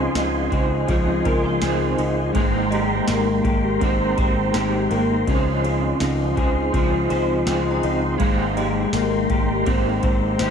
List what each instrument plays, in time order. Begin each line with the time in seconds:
Already playing: clean electric guitar C#3 F3 C4 D#4 G#4 C5, tonewheel organ F4 D#5 G#5 C6, synth bell F5
0.15 picked electric bass C#2, clean electric guitar D#4, snare, ride, tambourine
0.50 picked electric bass C#2, clean electric guitar D#4 G#4 C5, kick, ride
0.55 clean electric guitar C4
0.87 picked electric bass C#2, clean electric guitar F3 C4 D#4 G#4, kick, ride
0.92 clean electric guitar C5
1.25 picked electric bass C#2, clean electric guitar A#4, synth bell A#4, kick, ride
1.43 clean electric guitar C5
1.60 picked electric bass C#2, clean electric guitar C4 D#4 G#4, snare, ride, tambourine
1.64 clean electric guitar C5
1.98 picked electric bass C#2, clean electric guitar D#4, ride
2.33 picked electric bass G#1, clean electric guitar G#3 A#3 D#4, tonewheel organ G#3 G5 A#5 C6, kick, ride
2.38 clean electric guitar G4 C5
2.71 clean electric guitar G4, synth bell D#5, ride
3.08 picked electric bass G#1, clean electric guitar A#3, snare, ride, tambourine
3.44 picked electric bass G#1, clean electric guitar G4, kick, ride
3.80 picked electric bass G#1, clean electric guitar A#3 C4 D#4 G4, kick, ride
3.84 clean electric guitar C5
4.17 picked electric bass G#1, clean electric guitar C5, kick, ride
4.53 picked electric bass G#1, clean electric guitar A#3 D#4 G4, snare, ride, tambourine
4.57 clean electric guitar C5
4.91 picked electric bass G#1, clean electric guitar A#3, ride
5.26 picked electric bass C#2, clean electric guitar C#3 F3 C4 D#4 G#4 C5, tonewheel organ F4 D#5, kick, ride
5.64 clean electric guitar G#4, ride
6.00 picked electric bass C#2, clean electric guitar D#4, snare, ride, tambourine
6.36 picked electric bass C#2, clean electric guitar D#4 G#4 C5, kick, ride
6.40 clean electric guitar C4
6.72 picked electric bass C#2, clean electric guitar F3 C4 D#4 G#4, kick, ride
6.77 clean electric guitar C5
7.10 picked electric bass C#2, clean electric guitar C5, ride
7.45 picked electric bass C#2, clean electric guitar C4 D#4 G#4, synth bell G5, snare, ride, tambourine
7.50 clean electric guitar C5
7.71 synth bell A#5
7.83 picked electric bass C#2, clean electric guitar D#4, ride
8.18 picked electric bass G#1, clean electric guitar G#3 A#3 D#4, tonewheel organ G#3 G5 A#5, synth bell F5, kick, ride
8.23 clean electric guitar G4 C5
8.57 clean electric guitar G4, synth bell D#5, ride
8.93 picked electric bass G#1, clean electric guitar A#3, snare, ride, tambourine
9.30 picked electric bass G#1, clean electric guitar G4, kick, ride
9.65 picked electric bass G#1, clean electric guitar A#3 C4 D#4 G4, kick, ride
9.70 clean electric guitar C5
10.03 picked electric bass G#1, clean electric guitar C5, kick, ride
10.38 picked electric bass G#1, clean electric guitar A#3 D#4 G4, synth bell C5, snare, ride, tambourine
10.43 clean electric guitar C5